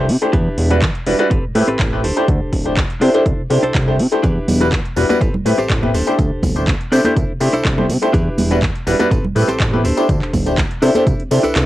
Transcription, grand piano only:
0.22 0.28 A3 medium
0.22 0.28 D4 medium
0.22 0.28 E4 medium
0.22 0.28 G4 medium
0.22 0.28 C5 medium
0.70 0.77 G3 medium
0.70 0.77 D4 medium
0.70 0.77 E4 medium
0.70 0.77 F#4 medium
0.70 0.77 B4 medium
1.06 1.13 G3 medium
1.06 1.13 D4 medium
1.06 1.13 E4 medium
1.06 1.14 F#4 medium
1.06 1.14 B4 medium
1.19 1.25 G3 medium
1.19 1.25 D4 medium
1.19 1.26 E4 medium
1.19 1.26 F#4 medium
1.19 1.26 B4 loud
1.55 1.66 A3 medium
1.55 1.66 C4 medium
1.55 1.66 E4 medium
1.55 1.66 G4 medium
1.55 1.66 B4 medium
1.92 1.98 A3 medium
1.92 1.99 C4 medium
1.92 1.99 E4 medium
1.92 1.99 G4 medium
1.92 1.99 B4 medium
2.17 2.23 A3 medium
2.17 2.23 D4 medium
2.17 2.23 E4 medium
2.17 2.23 G4 medium
2.17 2.23 C5 medium
2.65 2.72 A3 medium
2.65 2.72 D4 medium
2.65 2.72 E4 medium
2.65 2.72 G4 medium
2.65 2.72 C5 medium
3.01 3.08 A3 medium
3.01 3.08 D4 medium
3.01 3.09 E4 medium
3.01 3.09 G4 medium
3.01 3.09 C5 medium
3.14 3.20 A3 medium
3.14 3.21 D4 medium
3.14 3.21 E4 medium
3.14 3.21 G4 medium
3.14 3.21 C5 loud
3.50 3.61 A3 medium
3.50 3.61 D4 medium
3.50 3.61 E4 medium
3.50 3.61 G4 medium
3.50 3.61 C5 medium
3.87 3.94 A3 medium
3.87 3.94 D4 medium
3.87 3.94 E4 medium
3.87 3.94 G4 medium
3.87 3.94 C5 medium
4.12 4.18 A3 medium
4.12 4.18 D4 medium
4.12 4.18 E4 medium
4.12 4.18 G4 medium
4.12 4.18 C5 medium
4.60 4.67 G3 medium
4.60 4.67 D4 medium
4.60 4.67 E4 medium
4.60 4.67 F#4 medium
4.60 4.67 B4 medium
4.96 5.03 G3 medium
4.96 5.03 D4 medium
4.96 5.04 E4 medium
4.96 5.04 F#4 medium
4.96 5.04 B4 medium
5.09 5.15 G3 medium
5.09 5.16 D4 medium
5.09 5.16 E4 medium
5.09 5.16 F#4 medium
5.09 5.16 B4 loud
5.45 5.56 A3 medium
5.45 5.56 C4 medium
5.45 5.57 E4 medium
5.45 5.57 G4 medium
5.45 5.57 B4 medium
5.82 5.89 A3 medium
5.82 5.89 C4 medium
5.82 5.89 E4 medium
5.82 5.89 G4 medium
5.82 5.89 B4 medium
6.07 6.13 A3 medium
6.07 6.13 D4 medium
6.07 6.13 E4 medium
6.07 6.13 G4 medium
6.07 6.14 C5 medium
6.55 6.62 A3 medium
6.55 6.62 D4 medium
6.55 6.62 E4 medium
6.55 6.62 G4 medium
6.55 6.62 C5 medium
6.91 6.98 A3 medium
6.91 6.99 D4 medium
6.91 6.99 E4 medium
6.91 6.99 G4 medium
6.91 6.99 C5 medium
7.04 7.11 A3 medium
7.04 7.11 D4 medium
7.04 7.11 E4 medium
7.04 7.11 G4 medium
7.04 7.11 C5 loud
7.40 7.51 A3 medium
7.40 7.51 D4 medium
7.40 7.51 E4 medium
7.40 7.52 G4 medium
7.40 7.52 C5 medium
7.77 7.84 A3 medium
7.77 7.84 D4 medium
7.77 7.84 E4 medium
7.77 7.84 G4 medium
7.77 7.84 C5 medium
8.02 8.08 A3 medium
8.02 8.08 D4 medium
8.02 8.08 E4 medium
8.02 8.08 G4 medium
8.02 8.09 C5 medium
8.51 8.57 G3 medium
8.51 8.57 D4 medium
8.51 8.57 E4 medium
8.51 8.57 F#4 medium
8.51 8.57 B4 medium
8.87 8.94 G3 medium
8.87 8.94 D4 medium
8.87 8.94 E4 medium
8.87 8.94 F#4 medium
8.87 8.94 B4 medium
8.99 9.06 G3 medium
8.99 9.06 D4 medium
8.99 9.06 E4 medium
8.99 9.06 F#4 medium
8.99 9.06 B4 loud
9.35 9.46 A3 medium
9.35 9.47 C4 medium
9.35 9.47 E4 medium
9.35 9.47 G4 medium
9.35 9.47 B4 medium
9.73 9.79 A3 medium
9.73 9.79 C4 medium
9.73 9.79 E4 medium
9.73 9.79 G4 medium
9.73 9.79 B4 medium
9.97 10.03 A3 medium
9.97 10.03 D4 medium
9.97 10.04 E4 medium
9.97 10.04 G4 medium
9.97 10.04 C5 medium
10.46 10.52 A3 medium
10.46 10.52 D4 medium
10.46 10.52 E4 medium
10.46 10.53 G4 medium
10.46 10.53 C5 medium
10.82 10.89 A3 medium
10.82 10.89 D4 medium
10.82 10.89 E4 medium
10.82 10.89 G4 medium
10.82 10.89 C5 medium
10.95 11.01 A3 medium
10.95 11.01 D4 medium
10.95 11.01 E4 medium
10.95 11.01 G4 medium
10.95 11.01 C5 loud
11.31 11.42 A3 medium
11.31 11.42 D4 medium
11.31 11.42 E4 medium
11.31 11.42 G4 medium
11.31 11.42 C5 medium

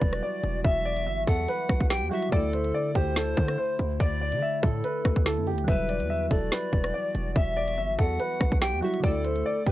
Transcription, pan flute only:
0.00 0.60 D5 medium
0.64 1.24 E5 loud
1.28 1.87 F#5 medium
1.90 2.10 G5 medium
2.11 2.31 E5 medium
2.32 2.91 A4 loud
2.95 3.78 C5 loud
4.00 4.59 D5 loud
4.63 5.22 A4 medium
5.68 6.27 B4 loud
6.31 7.32 D5 loud
7.36 7.95 E5 loud
7.99 8.58 F#5 medium
8.62 8.82 G5 medium
8.82 9.03 E5 medium
9.04 9.63 A4 loud
9.67 9.72 C5 loud

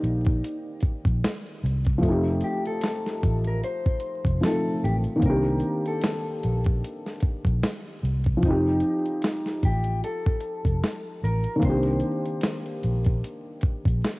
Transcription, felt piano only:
0.00 1.95 D#3 medium
0.00 1.97 A#3 medium
0.00 1.99 C4 medium
0.00 2.02 G4 medium
0.00 2.01 D5 medium
1.98 4.36 F3 medium
1.98 4.38 A3 medium
2.04 4.40 C4 medium
2.04 4.42 D#4 medium
2.12 4.43 G4 medium
4.41 5.22 F3 soft
4.41 5.23 A3 soft
4.41 5.21 C4 soft
4.46 5.24 D#4 soft
4.46 5.25 A4 soft
5.16 8.35 D#3 medium
5.16 8.37 A#3 medium
5.23 8.39 C4 medium
5.23 8.41 D4 medium
5.30 8.42 G4 medium
8.37 11.56 F3 medium
8.44 11.59 C4 medium
8.44 11.61 D#4 medium
8.50 11.63 G4 medium
11.56 14.20 D#3 medium
11.56 14.20 A#3 medium
11.63 14.20 C4 medium
11.63 14.20 D4 medium
11.70 14.20 G4 medium

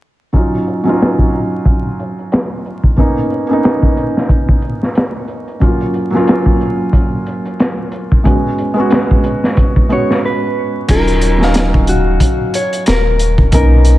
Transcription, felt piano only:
0.33 0.81 F#3 medium
0.33 0.81 C#4 medium
0.33 0.82 D#4 medium
0.33 0.82 F4 medium
0.84 2.93 F#3 medium
0.84 2.94 C#4 medium
0.84 2.95 D#4 medium
0.89 2.96 F4 medium
2.97 3.44 A#3 medium
2.97 3.45 B3 medium
2.97 3.45 C#4 medium
2.97 3.46 D#4 medium
3.47 5.56 A#3 medium
3.47 5.57 B3 medium
3.47 5.58 C#4 medium
3.53 5.59 D#4 medium
5.60 6.08 F#3 medium
5.60 6.09 A#3 medium
5.60 6.09 C#4 medium
5.60 6.09 F4 medium
6.10 8.20 F#3 medium
6.10 8.21 A#3 medium
6.15 8.22 C#4 medium
6.15 8.23 F4 medium
8.24 8.72 G#3 medium
8.24 8.72 B3 medium
8.24 8.73 C#4 medium
8.24 8.73 F#4 medium
8.74 9.85 G#3 medium
8.74 9.86 B3 medium
8.78 9.87 C#4 medium
8.78 9.88 F#4 loud
9.89 10.22 G#3 medium
9.89 10.23 B3 medium
9.89 10.23 C#4 medium
9.89 10.24 F#4 medium
10.88 11.36 F#3 medium
10.88 11.36 C#4 medium
10.88 11.37 D#4 medium
10.88 11.37 F4 medium
11.38 13.48 F#3 medium
11.38 13.49 C#4 medium
11.42 13.50 D#4 medium
11.42 13.51 F5 medium
13.51 13.98 A#3 medium
13.51 13.98 B3 medium
13.51 13.98 C#4 medium
13.51 13.98 D#4 medium

